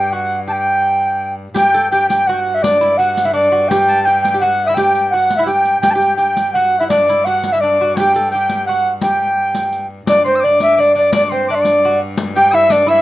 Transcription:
0.00 1.55 G2 medium
0.00 0.13 G4 medium
0.00 0.11 G5 medium
0.00 0.15 G5 loud
0.12 0.37 F#4 medium
0.12 0.37 F#5 medium
0.12 0.40 F#5 medium
0.48 1.34 G4 medium
0.48 1.34 G5 medium
0.48 0.54 A5 medium
0.53 1.34 G5 medium
1.54 5.84 G2 medium
1.54 1.74 G4 loud
1.54 1.89 G5 medium
1.54 1.89 G5 loud
1.54 riq medium
1.74 1.92 A4 medium
1.74 riq soft
1.91 2.08 G4 medium
1.91 2.08 G5 loud
1.91 2.08 G5 medium
1.91 riq soft
2.08 2.26 G4 medium
2.08 2.29 G5 medium
2.08 2.29 G5 loud
2.08 riq medium
2.27 2.63 F#4 medium
2.27 2.35 F#5 medium
2.27 2.56 F#5 loud
2.34 2.42 G5 medium
2.41 2.64 F#5 medium
2.54 2.64 E5 medium
2.63 2.81 D4 medium
2.63 2.99 D5 loud
2.63 2.98 D6 medium
2.63 riq medium
2.81 2.98 E4 medium
2.81 riq soft
2.98 3.25 F#4 medium
2.98 3.27 F#5 loud
2.98 3.32 F#5 medium
2.98 riq soft
3.17 riq medium
3.25 3.33 E4 medium
3.25 3.34 E5 medium
3.33 3.52 D4 medium
3.33 3.70 D5 medium
3.33 3.67 D6 medium
3.52 3.71 F#4 medium
3.68 4.06 G4 medium
3.68 4.03 G5 loud
3.68 3.79 G5 medium
3.68 riq medium
3.88 4.07 A5 medium
3.88 riq soft
4.04 4.33 G4 medium
4.04 4.21 G5 loud
4.04 4.44 G5 medium
4.04 riq soft
4.22 4.39 G5 loud
4.22 riq soft
4.34 4.41 G4 medium
4.40 4.66 F#4 medium
4.40 4.65 F#5 loud
4.40 4.70 F#5 medium
4.66 4.78 E4 medium
4.66 4.76 E5 medium
4.66 4.77 E6 medium
4.74 5.14 G4 medium
4.74 5.10 G5 loud
4.74 riq soft
4.79 5.16 G5 medium
4.95 riq soft
5.10 5.39 F#4 medium
5.10 5.36 F#5 loud
5.10 5.49 F#5 medium
5.30 riq soft
5.37 5.49 E4 medium
5.37 5.46 E5 medium
5.46 5.81 G4 medium
5.46 5.80 G5 loud
5.46 5.82 G5 medium
5.46 riq soft
5.65 riq soft
5.81 10.07 G2 medium
5.81 5.94 G4 medium
5.81 5.92 G5 loud
5.81 riq medium
5.86 5.97 G5 medium
5.91 6.16 G5 loud
5.91 5.95 A5 medium
5.95 6.17 G4 medium
5.95 6.18 G5 medium
6.02 riq soft
6.16 6.55 G4 medium
6.16 6.51 G5 loud
6.16 6.57 G5 medium
6.16 riq soft
6.37 riq soft
6.53 6.80 F#4 medium
6.53 6.79 F#5 loud
6.53 6.90 F#5 medium
6.80 6.90 E4 medium
6.80 6.84 E5 medium
6.89 7.09 D4 medium
6.89 7.26 D5 medium
6.89 7.28 D6 medium
6.89 riq medium
7.08 7.26 E4 medium
7.08 riq soft
7.25 7.54 F#4 medium
7.25 7.54 F#5 medium
7.25 7.52 F#5 medium
7.25 riq soft
7.44 riq medium
7.53 7.62 E4 medium
7.53 7.62 E5 medium
7.53 7.60 E6 medium
7.61 7.80 D4 medium
7.61 7.96 D5 medium
7.61 7.98 D6 medium
7.81 7.98 F#4 medium
7.96 8.15 G4 medium
7.96 8.29 G5 loud
7.96 8.14 G5 medium
7.96 riq medium
8.14 8.31 A4 medium
8.14 riq soft
8.31 8.69 G4 medium
8.31 8.48 G5 medium
8.31 8.64 G5 medium
8.31 riq soft
8.50 8.66 G5 medium
8.50 riq soft
8.66 8.93 F#4 medium
8.66 8.91 F#5 medium
8.66 8.92 F#5 medium
9.01 9.87 G4 medium
9.01 9.86 G5 medium
9.01 riq medium
9.55 riq medium
9.72 riq soft
10.07 13.02 G2 medium
10.07 10.26 D4 medium
10.07 10.25 D5 loud
10.07 10.24 D6 loud
10.07 riq medium
10.25 10.43 C4 medium
10.25 10.45 C5 medium
10.25 10.37 C6 medium
10.35 10.42 E6 medium
10.40 10.61 D5 loud
10.40 10.76 D6 loud
10.45 10.77 D4 medium
10.60 10.82 E5 loud
10.60 riq medium
10.77 10.94 D4 medium
10.77 10.97 D5 loud
10.77 10.94 D6 medium
10.95 11.11 D4 medium
10.95 11.13 D5 loud
10.95 11.11 D6 medium
11.12 11.31 D4 medium
11.12 11.22 D5 loud
11.12 11.31 D6 loud
11.12 riq medium
11.30 11.49 C4 medium
11.30 11.48 C5 medium
11.30 11.48 C6 medium
11.48 11.85 D4 medium
11.48 11.56 E5 medium
11.48 11.56 D6 medium
11.55 11.98 D5 medium
11.55 11.63 C6 medium
11.62 12.01 D6 medium
11.62 riq medium
11.85 12.00 F#4 medium
12.17 riq medium
12.36 12.54 G4 medium
12.36 12.54 G5 medium
12.36 12.56 G5 loud
12.52 12.70 E4 medium
12.52 12.74 E5 loud
12.52 12.72 E6 loud
12.70 12.86 D4 medium
12.70 12.89 D5 loud
12.70 12.91 D6 loud
12.70 riq medium
12.87 13.02 E4 medium
12.87 13.02 E5 loud
12.87 13.02 E6 medium

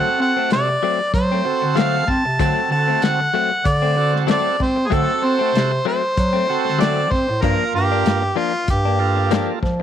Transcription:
0.00 0.68 C4 medium
0.00 0.68 F#4 medium
0.00 0.68 A4 medium
0.00 0.21 F#5 loud
0.19 0.34 C4 medium
0.19 0.50 F#5 loud
0.19 muted clean electric guitar stroke soft
0.37 0.51 A3 soft
0.37 0.51 C4 medium
0.51 0.77 C3 medium
0.51 1.11 D5 loud
0.51 muted clean electric guitar stroke soft
0.51 snare medium
0.51 closed hi-hat medium
0.69 muted clean electric guitar stroke soft
0.83 1.00 F#3 medium
0.83 1.00 A3 medium
0.83 0.99 C4 medium
1.00 muted clean electric guitar stroke soft
1.14 1.40 F#3 loud
1.14 1.79 C5 medium
1.14 kick loud
1.14 closed hi-hat medium
1.32 1.45 A3 soft
1.32 1.45 C4 soft
1.44 1.53 D3 soft
1.44 2.05 C4 medium
1.44 2.04 F#4 medium
1.44 2.05 A4 medium
1.44 muted clean electric guitar stroke soft
1.62 2.10 D3 medium
1.62 muted clean electric guitar stroke soft
1.76 1.96 F#3 medium
1.76 1.97 A3 medium
1.76 1.97 C4 medium
1.76 2.11 F5 loud
1.76 snare loud
1.76 closed hi-hat medium
2.07 2.23 C4 medium
2.07 2.40 A5 loud
2.07 muted clean electric guitar stroke soft
2.07 kick medium
2.07 snare soft
2.25 2.37 C3 medium
2.25 muted clean electric guitar stroke soft
2.39 2.54 D3 medium
2.39 2.60 F#3 medium
2.39 2.60 A3 medium
2.39 3.20 C4 medium
2.39 2.60 C4 medium
2.39 3.20 F#4 medium
2.39 3.20 A4 medium
2.39 2.70 A5 loud
2.39 kick loud
2.39 closed hi-hat medium
2.70 2.96 D3 medium
2.70 3.05 A5 loud
2.70 muted clean electric guitar stroke soft
2.88 3.01 A3 soft
2.88 3.02 C4 soft
3.02 3.28 D3 medium
3.02 3.69 F#5 loud
3.02 muted clean electric guitar stroke soft
3.02 snare medium
3.02 closed hi-hat medium
3.20 muted clean electric guitar stroke soft
3.34 3.51 F#3 medium
3.34 3.51 A3 medium
3.34 3.50 C4 medium
3.51 muted clean electric guitar stroke soft
3.65 4.43 D3 loud
3.65 4.14 D5 medium
3.65 kick loud
3.65 closed hi-hat medium
3.82 3.96 A3 soft
3.82 3.96 C4 soft
3.96 4.56 C4 medium
3.96 4.57 F#4 medium
3.96 4.57 A4 medium
3.96 muted clean electric guitar stroke soft
4.14 muted clean electric guitar stroke soft
4.14 snare soft
4.27 4.48 F#3 medium
4.27 4.48 A3 medium
4.27 4.48 C4 medium
4.27 snare loud
4.27 closed hi-hat medium
4.31 4.64 D5 loud
4.59 4.93 C4 medium
4.59 4.89 C5 medium
4.59 muted clean electric guitar stroke soft
4.59 kick medium
4.59 snare soft
4.76 muted clean electric guitar stroke soft
4.87 5.11 F#3 medium
4.87 5.11 A3 medium
4.87 5.11 C4 medium
4.87 5.72 C4 medium
4.87 5.72 F#4 medium
4.87 4.95 G#4 medium
4.92 5.06 D3 loud
4.92 5.72 A4 medium
4.92 5.26 A4 medium
4.92 kick loud
4.92 closed hi-hat medium
5.22 5.38 C4 medium
5.22 5.86 C5 loud
5.22 muted clean electric guitar stroke soft
5.39 5.53 A3 soft
5.39 5.53 C4 soft
5.54 5.80 C3 medium
5.54 muted clean electric guitar stroke soft
5.54 snare loud
5.54 closed hi-hat medium
5.71 muted clean electric guitar stroke soft
5.85 6.03 F#3 medium
5.85 6.03 A3 medium
5.85 6.02 C4 medium
5.85 6.82 C5 medium
6.03 muted clean electric guitar stroke soft
6.17 6.43 F#3 medium
6.17 kick loud
6.17 closed hi-hat medium
6.33 6.47 A3 soft
6.33 6.47 C4 medium
6.48 6.58 D3 soft
6.48 7.08 C4 medium
6.48 7.08 F#4 medium
6.48 7.09 A4 medium
6.48 muted clean electric guitar stroke soft
6.65 7.13 D3 medium
6.65 muted clean electric guitar stroke soft
6.65 snare soft
6.79 6.99 F#3 medium
6.79 7.00 A3 medium
6.79 7.00 C4 medium
6.79 7.13 D5 loud
6.79 snare loud
6.79 closed hi-hat medium
7.11 7.26 C4 medium
7.11 7.44 C5 medium
7.11 muted clean electric guitar stroke soft
7.11 kick medium
7.11 snare soft
7.29 7.41 A2 medium
7.29 muted clean electric guitar stroke soft
7.42 7.57 G2 loud
7.42 7.63 F3 medium
7.42 8.23 A#3 medium
7.42 7.63 A#3 medium
7.42 7.64 D4 medium
7.42 8.23 F4 medium
7.42 7.74 A#4 medium
7.42 8.23 A#4 medium
7.42 kick loud
7.42 closed hi-hat medium
7.74 8.00 G2 medium
7.74 8.39 G4 loud
7.74 muted clean electric guitar stroke soft
7.92 8.05 A#3 soft
7.92 8.05 D4 medium
8.06 8.32 G2 medium
8.06 muted clean electric guitar stroke soft
8.06 snare loud
8.06 closed hi-hat medium
8.22 muted clean electric guitar stroke soft
8.36 8.54 F3 medium
8.36 8.53 A#3 medium
8.36 8.53 D4 medium
8.36 8.68 F4 medium
8.54 muted clean electric guitar stroke soft
8.68 9.47 G2 loud
8.68 9.60 G4 medium
8.68 kick loud
8.68 closed hi-hat medium
8.85 8.99 A#3 soft
8.85 8.99 D4 medium
8.99 9.59 A#3 medium
8.99 9.59 F4 medium
8.99 9.59 A4 medium
8.99 muted clean electric guitar stroke soft
9.17 muted clean electric guitar stroke soft
9.31 9.51 F3 medium
9.31 9.52 A#3 medium
9.31 9.52 D4 medium
9.31 snare loud
9.31 closed hi-hat medium
9.63 9.83 F3 medium
9.63 muted clean electric guitar stroke soft
9.63 kick medium
9.63 snare soft

